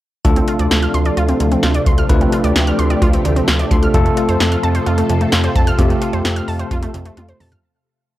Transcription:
0.25 0.41 D2 loud
0.25 3.90 C3 medium
0.25 0.34 D3 medium
0.25 3.90 F3 medium
0.25 2.06 A3 medium
0.25 7.59 A3 medium
0.25 2.06 D4 medium
0.25 3.90 D4 medium
0.25 2.06 F4 medium
0.25 2.08 F4 medium
0.25 2.06 A4 medium
0.25 kick loud
0.25 closed hi-hat medium
0.36 0.45 C4 medium
0.36 closed hi-hat soft
0.48 0.57 F4 medium
0.48 closed hi-hat medium
0.59 0.67 D2 medium
0.59 0.68 D5 medium
0.59 closed hi-hat medium
0.71 0.87 D2 loud
0.71 snare loud
0.71 closed hi-hat medium
0.82 0.91 F6 medium
0.82 closed hi-hat medium
0.94 1.10 D2 loud
0.94 1.03 C6 medium
0.94 closed hi-hat medium
1.05 1.14 D5 medium
1.05 closed hi-hat soft
1.17 1.33 D2 loud
1.17 1.26 F4 loud
1.17 closed hi-hat medium
1.29 1.37 C4 medium
1.29 closed hi-hat medium
1.40 1.56 D2 loud
1.40 1.49 D3 medium
1.40 closed hi-hat medium
1.52 1.60 C4 medium
1.52 closed hi-hat soft
1.63 1.79 D2 loud
1.63 1.72 F4 medium
1.63 snare loud
1.63 closed hi-hat medium
1.74 1.83 D5 medium
1.74 closed hi-hat medium
1.86 2.02 D2 loud
1.86 1.95 C6 medium
1.86 kick loud
1.86 closed hi-hat medium
1.98 2.07 F6 medium
1.98 closed hi-hat medium
2.09 2.26 D2 loud
2.09 2.18 D3 medium
2.09 3.68 A3 medium
2.09 3.68 D4 medium
2.09 3.68 F4 medium
2.09 3.92 G4 medium
2.09 3.68 B4 medium
2.09 kick loud
2.09 closed hi-hat medium
2.21 2.30 C4 medium
2.21 closed hi-hat soft
2.32 2.41 F4 medium
2.32 closed hi-hat medium
2.44 2.52 D2 loud
2.44 2.53 D5 medium
2.44 closed hi-hat medium
2.56 2.72 D2 loud
2.56 snare loud
2.56 closed hi-hat medium
2.67 2.76 F6 medium
2.67 closed hi-hat medium
2.79 2.95 D2 loud
2.79 2.87 C6 medium
2.79 closed hi-hat medium
2.90 2.99 D5 medium
2.90 closed hi-hat soft
3.02 3.18 D2 medium
3.02 3.10 F4 loud
3.02 kick loud
3.02 closed hi-hat medium
3.13 3.22 C4 medium
3.13 closed hi-hat medium
3.25 3.41 D2 loud
3.25 3.33 D3 medium
3.25 closed hi-hat medium
3.36 3.45 C4 medium
3.36 closed hi-hat medium
3.48 3.64 D2 medium
3.48 3.57 F4 medium
3.48 snare loud
3.48 closed hi-hat medium
3.59 3.68 D5 medium
3.59 closed hi-hat soft
3.71 3.87 D2 loud
3.71 3.93 A3 medium
3.71 3.94 D4 medium
3.71 3.93 F4 medium
3.71 3.93 A4 medium
3.71 3.80 C6 medium
3.71 kick loud
3.71 closed hi-hat medium
3.83 3.91 F6 medium
3.83 closed hi-hat medium
3.94 4.10 F2 loud
3.94 7.60 C3 medium
3.94 4.03 C3 medium
3.94 7.60 F3 medium
3.94 5.75 A3 medium
3.94 5.75 C4 medium
3.94 7.60 F4 medium
3.94 5.75 F4 medium
3.94 7.60 A4 medium
3.94 5.75 A4 medium
3.94 kick loud
3.94 closed hi-hat medium
4.06 4.14 A3 medium
4.06 closed hi-hat medium
4.17 4.26 F4 medium
4.17 closed hi-hat medium
4.29 4.37 F2 medium
4.29 4.37 C5 medium
4.29 closed hi-hat medium
4.40 4.56 F2 loud
4.40 snare loud
4.40 closed hi-hat medium
4.52 4.60 F6 medium
4.52 closed hi-hat medium
4.63 4.79 F2 loud
4.63 4.72 A5 medium
4.63 closed hi-hat medium
4.75 4.84 C5 medium
4.75 closed hi-hat soft
4.86 5.03 F2 loud
4.86 4.95 F4 medium
4.86 closed hi-hat medium
4.98 5.07 A3 medium
4.98 closed hi-hat medium
5.09 5.26 F2 medium
5.09 5.18 C3 medium
5.09 closed hi-hat medium
5.21 5.30 A3 medium
5.21 closed hi-hat medium
5.32 5.49 F2 loud
5.32 5.41 F4 medium
5.32 snare loud
5.32 closed hi-hat medium
5.44 5.53 C5 medium
5.44 closed hi-hat soft
5.56 5.72 F2 loud
5.56 5.64 A5 medium
5.56 kick loud
5.56 closed hi-hat medium
5.67 5.76 F6 medium
5.67 closed hi-hat medium
5.79 5.95 F2 loud
5.79 5.87 C3 medium
5.79 7.60 A3 medium
5.79 7.60 C4 medium
5.79 7.60 F4 medium
5.79 7.60 G4 medium
5.79 kick loud
5.79 closed hi-hat medium
5.90 5.99 A3 medium
5.90 closed hi-hat soft
6.02 6.10 F4 medium
6.02 closed hi-hat medium
6.13 6.21 F2 medium
6.13 6.22 C5 medium
6.13 closed hi-hat medium
6.25 6.41 F2 loud
6.25 snare loud
6.25 closed hi-hat medium
6.36 6.45 F6 medium
6.36 closed hi-hat medium
6.48 6.64 F2 loud
6.48 6.57 A5 medium
6.48 open hi-hat soft
6.59 6.68 C5 medium
6.59 closed hi-hat soft
6.71 6.87 F2 loud
6.71 6.80 F4 loud
6.71 kick loud
6.71 closed hi-hat medium
6.83 6.91 A3 medium
6.83 closed hi-hat medium
6.94 7.10 F2 medium
6.94 7.03 C3 medium
6.94 closed hi-hat medium
7.06 7.14 A3 medium
7.06 closed hi-hat soft
7.17 7.33 F2 loud
7.17 7.26 F4 medium
7.17 closed hi-hat medium
7.17 high tom medium
7.29 7.37 C5 medium
7.29 closed hi-hat medium
7.40 7.56 F2 loud
7.40 7.49 A5 medium
7.40 mid tom medium
7.40 open hi-hat medium
7.52 7.60 F6 medium
7.52 closed hi-hat medium
7.52 floor tom medium

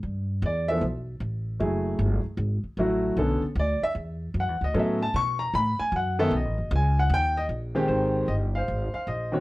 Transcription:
0.03 0.41 G2 medium
0.42 0.80 E2 loud
0.42 0.69 D5 medium
0.68 0.81 F3 medium
0.68 0.82 B3 medium
0.68 0.81 E4 medium
0.68 0.82 A4 medium
0.68 0.81 E5 loud
0.81 1.20 B1 medium
1.20 1.59 A1 medium
1.60 1.98 F#1 medium
1.60 2.20 F#3 medium
1.60 2.20 A3 medium
1.60 2.20 E4 medium
1.60 2.20 G#4 medium
1.99 2.23 G1 loud
2.25 muted upright bass stroke soft
2.37 2.62 G#1 loud
2.64 muted upright bass stroke soft
2.77 3.16 A1 medium
2.77 3.18 F#3 medium
2.77 3.18 A3 medium
2.77 3.18 E4 medium
2.77 3.18 F#4 medium
3.17 3.41 B1 medium
3.17 3.41 D3 medium
3.17 3.41 B3 medium
3.17 3.41 C#4 medium
3.17 3.41 A4 medium
3.42 muted upright bass stroke soft
3.55 3.80 D2 loud
3.59 3.83 D5 loud
3.82 3.91 E5 loud
3.82 muted upright bass stroke soft
3.95 4.34 E2 medium
4.34 4.49 F#2 loud
4.40 4.63 F#5 medium
4.49 4.60 E2 medium
4.61 4.73 D2 medium
4.61 4.76 D#5 loud
4.74 5.13 A2 medium
4.74 4.98 F#3 medium
4.74 4.98 B3 medium
4.74 4.98 C#4 medium
4.74 4.98 A4 medium
4.79 5.02 E5 medium
5.02 5.15 A5 loud
5.14 5.52 B2 loud
5.14 5.40 C#6 loud
5.39 5.53 A#5 loud
5.54 5.77 A2 loud
5.54 5.79 B5 loud
5.79 5.92 G#5 loud
5.79 muted upright bass stroke soft
5.92 6.30 F#2 loud
5.96 6.19 F#5 medium
6.19 6.31 D#3 medium
6.19 6.31 B3 medium
6.19 6.31 C#4 medium
6.19 6.31 A4 loud
6.19 6.33 E5 medium
6.31 6.45 B1 medium
6.37 6.71 D#5 medium
6.45 6.57 A1 medium
6.58 6.70 F#1 medium
6.71 7.09 C#2 loud
6.76 6.99 G#5 medium
6.99 7.11 F#5 loud
7.09 7.48 D#2 loud
7.14 7.37 G5 loud
7.37 7.45 D#5 loud
7.49 7.88 A#1 medium
7.75 8.25 D#3 medium
7.75 8.26 G#3 medium
7.75 8.26 C4 medium
7.75 7.89 G4 loud
7.88 8.27 G#1 medium
7.88 8.64 D#4 medium
7.88 8.64 G4 medium
7.88 8.29 C5 medium
8.28 8.67 G1 medium
8.28 8.34 D#5 medium
8.55 9.31 C5 medium
8.55 8.92 F5 medium
8.68 8.92 G#1 medium
8.94 9.08 F5 medium
8.94 muted upright bass stroke soft
9.07 9.40 A#1 medium
9.07 9.32 D#5 medium
9.32 9.40 D#3 medium
9.32 9.40 A#3 medium
9.32 9.40 C4 medium
9.32 9.40 F#4 medium
9.32 9.40 C#5 medium

